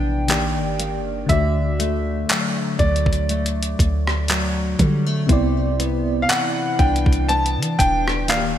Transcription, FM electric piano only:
0.00 0.24 C3 medium
0.00 0.25 B3 medium
0.00 0.26 E4 medium
0.00 0.30 D5 medium
0.28 1.29 D#3 medium
0.28 1.29 A#3 medium
0.28 1.30 G4 medium
0.28 1.30 D5 medium
1.26 5.24 D3 medium
1.26 5.25 A3 medium
1.26 5.26 F#4 medium
1.32 5.27 D5 medium
5.27 8.24 C3 medium
5.27 8.25 B3 medium
5.27 8.26 E4 medium
5.33 8.27 D5 medium
8.28 8.58 D#3 medium
8.28 8.58 A#3 medium
8.28 8.37 F4 soft
8.28 8.58 D5 medium
8.37 8.58 G4 medium

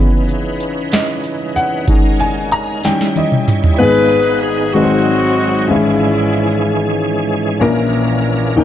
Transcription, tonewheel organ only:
0.00 1.86 E3 medium
0.00 2.81 C#4 medium
0.00 1.86 D#4 medium
0.00 1.86 B4 medium
1.87 2.83 G#3 medium
1.87 3.77 D#4 medium
1.87 2.83 A#4 medium
2.84 3.79 G3 medium
2.84 3.78 E4 medium
2.84 3.79 C#5 medium
3.78 4.73 G#3 medium
3.78 4.74 B3 medium
3.78 5.68 D#4 medium
3.78 4.74 B4 medium
4.74 5.69 F#3 medium
4.74 5.69 C4 medium
4.74 7.58 G#4 medium
5.70 7.59 G#2 medium
5.70 8.54 E3 medium
5.70 7.59 G#3 medium
5.70 8.64 C#4 medium
7.61 8.64 A#3 medium
7.61 8.56 A#4 medium
8.57 8.64 D#3 medium
8.57 8.64 G5 medium

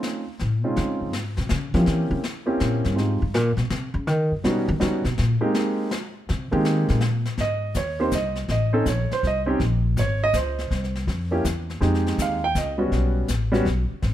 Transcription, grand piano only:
0.00 0.22 A3 soft
0.00 0.22 C4 soft
0.00 0.22 C#4 soft
0.00 0.22 D#4 soft
0.00 0.23 F4 medium
0.64 1.11 G#3 soft
0.64 1.11 C4 soft
0.64 1.11 C#4 soft
0.64 1.11 D#4 soft
0.64 1.11 F4 medium
1.74 2.21 A#3 medium
1.74 2.21 C4 soft
1.74 2.21 C#4 medium
1.74 2.21 E4 medium
1.74 2.21 G4 medium
2.46 2.94 A#3 medium
2.46 2.94 C4 medium
2.46 2.94 C#4 medium
2.46 2.94 E4 medium
2.46 2.94 G4 medium
2.96 3.18 G#3 soft
2.96 3.18 C4 soft
2.96 3.18 D#4 soft
2.96 3.19 F4 soft
2.96 3.18 G4 soft
4.44 4.66 G3 medium
4.44 4.66 B3 medium
4.44 4.66 C#4 medium
4.44 4.66 D#4 medium
4.44 4.66 F#4 medium
4.80 5.02 G3 medium
4.80 5.02 B3 soft
4.80 5.02 C#4 soft
4.80 5.02 D#4 medium
4.80 5.02 F#4 medium
5.41 5.88 G#3 medium
5.41 5.88 A#3 medium
5.41 5.88 C4 medium
5.41 5.89 D#4 medium
5.41 5.88 G4 medium
6.51 6.99 G#3 medium
6.51 6.99 A#3 medium
6.51 6.99 C4 medium
6.51 6.99 D#4 medium
6.51 6.99 G4 medium
7.41 7.74 D#5 medium
7.77 8.00 C#5 medium
7.99 8.11 A#3 medium
7.99 8.11 C4 medium
7.99 8.11 D#4 medium
7.99 8.11 G4 medium
7.99 8.13 C5 medium
8.15 8.37 D#5 medium
8.51 8.85 D#5 medium
8.73 8.85 C4 medium
8.73 8.85 C#4 medium
8.73 8.85 D#4 medium
8.73 8.85 A4 medium
8.88 9.11 C#5 medium
9.13 9.24 C5 medium
9.27 9.40 D#5 medium
9.46 9.58 C4 medium
9.46 9.58 C#4 medium
9.46 9.58 D#4 medium
9.46 9.59 G4 medium
9.99 10.22 C#5 medium
10.24 10.35 D#5 loud
10.35 10.92 C5 medium
11.31 11.43 A#3 medium
11.31 11.43 C#4 medium
11.31 11.43 E4 medium
11.31 11.43 G4 medium
11.80 12.37 G#3 medium
11.80 12.38 C4 medium
11.80 12.38 D#4 medium
11.80 12.38 G4 medium
12.22 12.44 F5 medium
12.44 12.56 G5 loud
12.58 13.14 D#5 medium
12.78 13.26 G3 medium
12.78 13.26 B3 medium
12.78 13.26 C#4 medium
12.78 13.26 F#4 medium
13.52 13.64 G3 medium
13.52 13.64 B3 medium
13.52 13.64 C#4 medium
13.52 13.65 F#4 medium

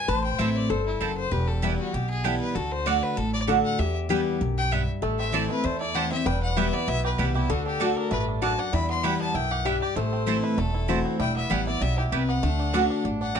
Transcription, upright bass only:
0.08 0.30 A1 loud
0.39 0.65 A1 medium
0.70 0.96 G1 medium
1.01 1.27 F#1 medium
1.32 1.76 E1 medium
1.94 2.37 B1 medium
2.55 2.99 D2 loud
3.17 3.61 A1 medium
3.79 4.23 E2 medium
4.41 4.85 B1 loud
5.03 5.46 A1 medium
5.64 6.08 E2 medium
6.26 6.70 E1 medium
6.88 7.14 B1 medium
7.19 7.45 C2 medium
7.49 7.93 D2 medium
8.11 8.55 A1 loud
8.73 9.17 E2 medium
9.35 9.78 B1 medium
9.96 10.40 A1 loud
10.58 11.02 E1 medium
11.20 11.42 E1 loud
11.51 11.77 A1 medium
11.81 12.08 B1 medium
12.12 12.38 C2 medium
12.43 12.87 D2 medium
13.04 13.40 A1 medium

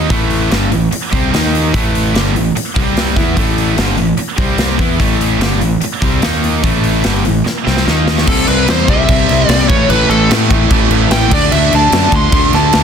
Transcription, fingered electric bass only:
0.10 0.48 A1 medium
0.51 0.70 G1 medium
0.73 0.91 A1 medium
0.93 muted fingered electric bass stroke soft
1.12 1.31 C2 medium
1.33 1.71 D#2 medium
1.74 2.12 A1 medium
2.14 2.33 G1 medium
2.34 2.54 A1 medium
2.56 muted fingered electric bass stroke soft
2.76 3.14 C2 medium
3.16 3.35 E2 medium
3.36 3.74 A1 medium
3.77 3.96 G1 medium
3.97 4.16 A1 medium
4.18 muted fingered electric bass stroke soft
4.38 4.76 C2 medium
4.79 4.98 E2 medium
4.99 5.38 A1 medium
5.39 5.59 G1 medium
5.60 5.80 A1 medium
5.81 muted fingered electric bass stroke soft
6.02 6.21 C2 medium
6.23 6.61 D#2 medium
6.64 7.02 A1 medium
7.06 7.24 G1 medium
7.26 7.44 A1 medium
7.46 muted fingered electric bass stroke soft
7.67 7.85 C2 medium
7.87 8.25 D#2 medium
8.27 8.46 C2 medium
8.48 8.66 C2 medium
8.69 8.87 E2 loud
8.88 9.07 C2 medium
9.09 9.27 C2 medium
9.29 9.48 C2 medium
9.49 9.69 C2 medium
9.69 9.88 A1 loud
9.90 10.08 A1 loud
10.09 10.28 A1 loud
10.30 10.49 A2 medium
10.51 10.69 A1 loud
10.70 10.89 A1 medium
10.90 11.09 A1 loud
11.10 11.30 A1 medium
11.31 11.50 D2 loud
11.53 11.71 D2 loud
11.73 11.91 D2 medium
11.92 12.11 F#2 medium
12.12 12.31 D2 loud
12.32 12.51 D2 medium
12.54 12.72 D2 loud
12.75 12.83 D2 medium

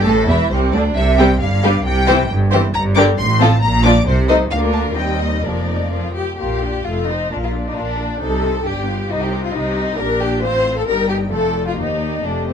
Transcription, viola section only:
0.05 0.13 A3 loud
0.29 0.50 E3 medium
0.51 0.72 C3 medium
0.73 0.81 D3 medium
1.18 1.28 G3 medium
1.18 1.28 C4 medium
1.63 1.73 G3 medium
1.63 1.74 D4 medium
2.10 2.19 E3 medium
2.10 2.19 C4 medium
2.53 2.63 E3 medium
2.53 2.63 C4 medium
2.97 3.07 D3 medium
2.97 3.07 D4 medium
3.41 3.51 F3 medium
3.41 3.51 C4 medium
3.84 3.94 F3 medium
3.84 3.94 D4 medium
4.29 4.39 A3 medium
4.29 4.39 D#4 medium
4.51 4.94 A#3 medium
4.51 4.94 D4 medium
4.96 5.43 G3 medium
4.96 5.43 C4 medium
5.44 5.91 F3 medium
5.44 5.90 A#3 medium
5.92 6.18 F3 medium
5.92 6.19 C4 soft
6.39 6.61 F4 soft
6.39 6.61 A#4 soft
6.64 6.86 D4 soft
6.64 6.86 F4 soft
6.86 7.07 A3 soft
6.86 7.07 A4 soft
7.09 7.31 C4 soft
7.09 7.31 C5 soft
7.32 7.52 F4 soft
7.32 7.52 A#4 soft
7.54 7.76 D4 soft
7.54 7.75 F4 soft
7.76 7.97 F4 soft
7.76 7.99 A#4 soft
7.98 8.20 D4 soft
7.98 8.20 F4 soft
8.20 8.41 D#4 soft
8.20 8.41 G4 soft
8.42 8.65 C4 soft
8.42 8.65 D#4 soft
8.66 8.86 D4 soft
8.66 8.86 G4 soft
8.87 9.10 B3 soft
8.87 9.09 F4 soft
9.10 9.31 D#4 soft
9.10 9.30 G4 soft
9.32 9.54 C4 medium
9.32 9.53 D#4 soft
9.54 9.76 D#4 soft
9.54 9.76 G4 soft
9.77 9.98 C4 soft
9.77 9.99 D#4 soft
9.97 10.39 D4 medium
9.97 10.39 G4 medium
10.42 10.86 C4 medium
10.42 10.87 F4 medium
10.86 11.31 G3 medium
10.86 11.31 D#4 medium
11.31 11.75 A3 medium
11.31 11.75 F4 soft
11.75 12.21 A#3 soft
11.75 12.21 G4 soft
12.22 12.53 A3 soft
12.22 12.53 G4 soft

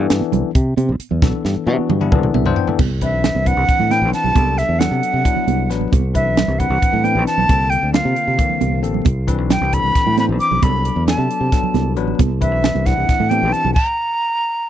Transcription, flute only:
3.03 3.49 E5 medium
3.47 3.93 F#5 loud
3.91 4.13 G5 medium
4.14 4.60 A5 medium
4.58 4.81 E5 medium
4.79 5.69 F#5 medium
6.15 6.60 E5 medium
6.59 7.06 F#5 medium
7.04 7.26 G5 medium
7.27 7.71 A5 loud
7.70 7.93 G5 medium
7.94 8.79 F5 medium
9.51 9.75 G5 medium
9.74 10.18 B5 medium
10.20 10.26 B5 medium
10.40 10.65 D6 medium
10.63 11.07 B5 medium
11.08 11.93 A5 medium
12.41 12.88 E5 medium
12.86 13.31 F#5 medium
13.30 13.54 G5 medium
13.52 13.73 A5 medium
13.74 14.70 A#5 medium

